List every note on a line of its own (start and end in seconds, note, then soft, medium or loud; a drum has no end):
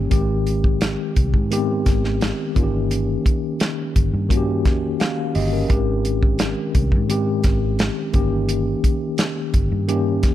0.00 0.10 D#3 medium
0.00 0.13 A#3 medium
0.00 0.14 C#4 medium
0.00 0.12 G4 medium
0.10 0.95 G#1 medium
0.10 1.11 D#3 medium
0.10 1.12 G#3 medium
0.10 1.12 C4 medium
0.10 1.12 G4 medium
0.10 kick medium
0.10 closed hi-hat medium
0.47 closed hi-hat medium
0.64 kick medium
0.81 snare medium
0.81 closed hi-hat medium
1.16 1.36 C2 medium
1.16 kick medium
1.16 closed hi-hat medium
1.34 1.88 G#2 medium
1.34 kick medium
1.51 2.51 D#3 medium
1.51 2.52 G#3 medium
1.51 1.58 B3 medium
1.51 2.52 G4 medium
1.51 closed hi-hat medium
1.58 2.55 C4 medium
1.86 2.31 G#1 medium
1.86 kick medium
1.86 snare soft
1.86 closed hi-hat medium
2.04 snare soft
2.21 snare loud
2.21 closed hi-hat medium
2.55 3.15 G1 medium
2.55 3.67 D#3 medium
2.55 3.67 A#3 medium
2.55 3.68 C#4 medium
2.55 2.63 F4 medium
2.55 kick medium
2.55 closed hi-hat medium
2.63 3.71 G4 medium
2.91 closed hi-hat medium
3.26 kick medium
3.26 closed hi-hat medium
3.60 snare medium
3.60 closed hi-hat medium
3.96 4.11 G1 medium
3.96 kick medium
3.96 closed hi-hat medium
4.14 4.66 G2 medium
4.29 5.30 D#3 medium
4.29 5.30 A#3 medium
4.29 5.00 C#4 medium
4.29 4.37 F#4 medium
4.29 kick medium
4.29 closed hi-hat medium
4.37 5.04 G4 medium
4.65 4.95 F2 medium
4.65 kick medium
4.65 snare soft
4.65 closed hi-hat medium
5.00 5.33 F5 medium
5.00 snare loud
5.00 closed hi-hat medium
5.35 5.65 G1 medium
5.35 5.52 G4 soft
5.35 5.52 D#5 medium
5.35 open hi-hat medium
5.53 5.86 C#4 soft
5.53 5.86 A#4 medium
5.69 6.53 G#1 medium
5.69 6.70 D#3 medium
5.69 6.70 G#3 medium
5.69 6.70 C4 medium
5.69 6.71 G4 medium
5.69 kick loud
5.69 closed hi-hat medium
6.05 closed hi-hat medium
6.23 kick medium
6.39 snare medium
6.39 closed hi-hat medium
6.75 6.94 C2 medium
6.75 kick medium
6.75 closed hi-hat medium
6.92 7.46 G#2 medium
6.92 kick medium
7.09 8.10 D#3 medium
7.09 8.10 G#3 medium
7.09 8.10 C4 medium
7.09 8.11 G4 medium
7.09 closed hi-hat medium
7.44 7.89 G#1 medium
7.44 kick medium
7.44 snare soft
7.44 closed hi-hat medium
7.79 snare loud
7.79 closed hi-hat medium
8.13 8.73 G1 medium
8.13 9.25 D#3 medium
8.13 9.26 A#3 medium
8.13 9.26 C#4 medium
8.13 9.26 G4 medium
8.13 kick medium
8.13 closed hi-hat medium
8.49 closed hi-hat medium
8.84 kick medium
8.84 closed hi-hat medium
9.18 snare medium
9.18 closed hi-hat medium
9.54 9.69 G1 medium
9.54 kick medium
9.54 closed hi-hat medium
9.72 10.24 G2 medium
9.88 10.35 D#3 medium
9.88 10.35 A#3 medium
9.88 10.35 C#4 medium
9.88 10.35 G4 medium
9.88 closed hi-hat medium
10.23 10.35 F2 medium
10.23 kick medium
10.23 snare soft
10.23 closed hi-hat medium